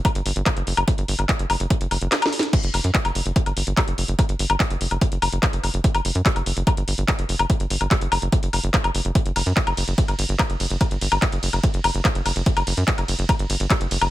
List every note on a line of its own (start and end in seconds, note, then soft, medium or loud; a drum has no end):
0.05 kick loud
0.05 closed hi-hat loud
0.05 high woodblock medium
0.15 0.22 G1 medium
0.15 closed hi-hat medium
0.26 0.32 G1 loud
0.26 open hi-hat loud
0.36 0.42 G1 medium
0.36 closed hi-hat medium
0.46 kick loud
0.46 clap loud
0.46 closed hi-hat loud
0.46 high woodblock soft
0.57 0.63 F#1 medium
0.57 closed hi-hat medium
0.67 0.73 F#1 loud
0.67 open hi-hat medium
0.77 0.84 F#1 medium
0.77 closed hi-hat medium
0.77 high woodblock medium
0.88 kick loud
0.88 closed hi-hat loud
0.98 1.05 G1 medium
0.98 closed hi-hat medium
1.08 1.15 G1 loud
1.08 open hi-hat loud
1.19 1.25 G1 medium
1.19 closed hi-hat medium
1.19 high woodblock soft
1.29 kick loud
1.29 clap loud
1.29 closed hi-hat loud
1.39 1.46 F#1 medium
1.39 closed hi-hat medium
1.50 1.56 F#1 loud
1.50 open hi-hat medium
1.50 high woodblock medium
1.60 1.67 F#1 medium
1.60 closed hi-hat medium
1.70 kick loud
1.70 closed hi-hat loud
1.81 1.87 F#1 medium
1.81 closed hi-hat medium
1.91 1.98 F#1 loud
1.91 open hi-hat loud
1.91 high woodblock soft
2.01 2.08 F#1 medium
2.01 closed hi-hat medium
2.12 snare medium
2.12 clap loud
2.12 closed hi-hat loud
2.22 snare medium
2.22 closed hi-hat medium
2.22 high woodblock medium
2.33 open hi-hat medium
2.39 snare loud
2.39 closed hi-hat medium
2.53 kick loud
2.53 closed hi-hat loud
2.53 crash medium
2.64 2.70 F#1 medium
2.64 closed hi-hat medium
2.74 2.80 F#1 loud
2.74 open hi-hat loud
2.74 high woodblock soft
2.84 2.91 F#2 medium
2.84 closed hi-hat medium
2.95 kick loud
2.95 clap loud
2.95 closed hi-hat medium
3.05 3.11 F#1 medium
3.05 closed hi-hat medium
3.05 high woodblock medium
3.15 3.22 F#1 loud
3.15 open hi-hat loud
3.26 3.32 F#1 loud
3.26 closed hi-hat medium
3.36 kick loud
3.36 closed hi-hat loud
3.46 3.53 G1 medium
3.46 closed hi-hat medium
3.46 high woodblock soft
3.57 3.63 G1 loud
3.57 open hi-hat loud
3.67 3.73 G1 medium
3.67 closed hi-hat medium
3.77 kick loud
3.77 clap loud
3.77 closed hi-hat loud
3.77 high woodblock medium
3.88 3.94 F#1 medium
3.88 closed hi-hat medium
3.98 4.05 F#1 loud
3.98 open hi-hat medium
4.08 4.15 F#1 medium
4.08 closed hi-hat medium
4.19 kick loud
4.19 closed hi-hat loud
4.19 high woodblock soft
4.29 4.36 G1 medium
4.29 closed hi-hat medium
4.39 4.46 G1 loud
4.39 open hi-hat loud
4.50 4.56 G1 medium
4.50 closed hi-hat medium
4.50 high woodblock medium
4.60 kick loud
4.60 clap loud
4.60 closed hi-hat medium
4.70 4.77 F#1 medium
4.70 closed hi-hat medium
4.81 4.87 F#1 loud
4.81 open hi-hat loud
4.91 4.98 F#1 loud
4.91 closed hi-hat medium
4.91 high woodblock soft
5.01 kick loud
5.01 closed hi-hat loud
5.12 5.18 F#1 medium
5.12 closed hi-hat medium
5.22 5.29 F#1 loud
5.22 open hi-hat loud
5.22 high woodblock medium
5.32 5.39 F#1 medium
5.32 closed hi-hat medium
5.43 kick loud
5.43 clap loud
5.43 closed hi-hat medium
5.53 5.60 F#1 medium
5.53 closed hi-hat medium
5.63 5.70 F#1 loud
5.63 open hi-hat medium
5.63 high woodblock soft
5.74 5.80 F#1 medium
5.74 closed hi-hat medium
5.84 kick loud
5.84 closed hi-hat medium
5.95 6.01 F#1 medium
5.95 closed hi-hat medium
5.95 high woodblock medium
6.05 6.11 F#1 loud
6.05 open hi-hat loud
6.15 6.22 F#2 medium
6.15 closed hi-hat medium
6.26 kick loud
6.26 clap loud
6.26 closed hi-hat medium
6.36 6.42 F#1 medium
6.36 closed hi-hat medium
6.36 high woodblock soft
6.46 6.53 F#1 loud
6.46 open hi-hat loud
6.57 6.63 F#1 loud
6.57 closed hi-hat medium
6.67 kick loud
6.67 closed hi-hat medium
6.67 high woodblock medium
6.77 6.84 G1 medium
6.77 closed hi-hat medium
6.88 6.94 G1 loud
6.88 open hi-hat loud
6.98 7.05 G1 medium
6.98 closed hi-hat medium
7.08 kick loud
7.08 clap loud
7.08 closed hi-hat medium
7.08 high woodblock soft
7.19 7.25 F#1 medium
7.19 closed hi-hat medium
7.29 7.36 F#1 loud
7.29 open hi-hat loud
7.39 7.46 F#1 medium
7.39 closed hi-hat medium
7.39 high woodblock medium
7.50 kick loud
7.50 closed hi-hat medium
7.60 7.67 G1 medium
7.60 closed hi-hat medium
7.70 7.77 G1 loud
7.70 open hi-hat loud
7.81 7.87 G1 medium
7.81 closed hi-hat medium
7.81 high woodblock soft
7.91 kick loud
7.91 clap loud
7.91 closed hi-hat medium
8.01 8.08 F#1 medium
8.01 closed hi-hat medium
8.12 8.18 F#1 loud
8.12 open hi-hat loud
8.12 high woodblock medium
8.22 8.29 F#1 medium
8.22 closed hi-hat medium
8.32 kick loud
8.32 closed hi-hat medium
8.43 8.49 F#1 medium
8.43 closed hi-hat medium
8.53 8.60 F#1 loud
8.53 open hi-hat loud
8.53 high woodblock soft
8.63 8.70 F#1 medium
8.63 closed hi-hat medium
8.74 kick loud
8.74 clap loud
8.74 closed hi-hat medium
8.84 8.91 F#1 medium
8.84 closed hi-hat medium
8.84 high woodblock medium
8.95 9.01 F#1 loud
8.95 open hi-hat loud
9.05 9.11 F#1 medium
9.05 closed hi-hat medium
9.15 kick loud
9.15 closed hi-hat medium
9.26 9.32 F#1 medium
9.26 closed hi-hat medium
9.36 9.42 F#1 loud
9.36 open hi-hat loud
9.36 ride medium
9.36 high woodblock soft
9.46 9.53 F#2 medium
9.46 closed hi-hat medium
9.57 kick loud
9.57 clap loud
9.57 closed hi-hat medium
9.67 9.73 F#1 medium
9.67 closed hi-hat medium
9.67 high woodblock medium
9.77 9.84 F#1 loud
9.77 open hi-hat medium
9.77 ride medium
9.88 9.94 F#1 medium
9.88 closed hi-hat medium
9.98 kick loud
9.98 closed hi-hat medium
10.08 10.15 G1 medium
10.08 closed hi-hat medium
10.08 high woodblock soft
10.19 10.25 G1 loud
10.19 open hi-hat loud
10.19 ride medium
10.29 10.36 G1 medium
10.29 closed hi-hat medium
10.39 kick loud
10.39 clap loud
10.39 closed hi-hat medium
10.39 high woodblock medium
10.50 10.56 F#1 medium
10.50 closed hi-hat soft
10.60 10.67 F#1 loud
10.60 open hi-hat medium
10.60 ride medium
10.70 10.77 F#1 medium
10.70 closed hi-hat medium
10.81 kick loud
10.81 closed hi-hat loud
10.81 high woodblock soft
10.91 10.98 G1 medium
10.91 closed hi-hat medium
11.01 11.08 G1 loud
11.01 open hi-hat loud
11.01 ride medium
11.12 11.18 G1 medium
11.12 closed hi-hat medium
11.12 high woodblock medium
11.22 kick loud
11.22 clap loud
11.22 closed hi-hat medium
11.32 11.39 F#1 medium
11.32 closed hi-hat medium
11.43 11.49 F#1 loud
11.43 open hi-hat medium
11.43 ride medium
11.53 11.60 F#1 loud
11.53 closed hi-hat medium
11.53 high woodblock soft
11.63 kick loud
11.63 closed hi-hat loud
11.74 11.80 F#1 medium
11.74 closed hi-hat medium
11.84 11.91 F#1 loud
11.84 open hi-hat loud
11.84 ride medium
11.84 high woodblock medium
11.95 12.01 F#1 medium
11.95 closed hi-hat medium
12.05 kick loud
12.05 clap loud
12.05 closed hi-hat medium
12.15 12.22 F#1 medium
12.15 closed hi-hat medium
12.26 12.32 F#1 loud
12.26 open hi-hat medium
12.26 ride medium
12.26 high woodblock soft
12.36 12.42 F#1 medium
12.36 closed hi-hat medium
12.46 kick loud
12.46 closed hi-hat loud
12.57 12.63 F#1 medium
12.57 closed hi-hat medium
12.57 high woodblock medium
12.67 12.73 F#1 loud
12.67 open hi-hat loud
12.67 ride medium
12.77 12.84 F#2 medium
12.77 closed hi-hat medium
12.88 kick loud
12.88 clap loud
12.88 closed hi-hat medium
12.98 13.05 F#1 medium
12.98 closed hi-hat medium
12.98 high woodblock soft
13.08 13.15 F#1 loud
13.08 open hi-hat medium
13.08 ride medium
13.19 13.25 F#1 loud
13.19 closed hi-hat medium
13.29 kick loud
13.29 closed hi-hat loud
13.29 high woodblock medium
13.39 13.46 G1 medium
13.39 closed hi-hat medium
13.50 13.56 G1 loud
13.50 open hi-hat loud
13.50 ride medium
13.60 13.67 G1 medium
13.60 closed hi-hat medium
13.70 kick loud
13.70 clap loud
13.70 closed hi-hat loud
13.70 high woodblock soft
13.81 13.87 F#1 medium
13.81 closed hi-hat medium
13.91 13.98 F#1 loud
13.91 open hi-hat medium
13.91 ride medium
14.01 14.08 F#1 medium
14.01 closed hi-hat medium
14.01 high woodblock medium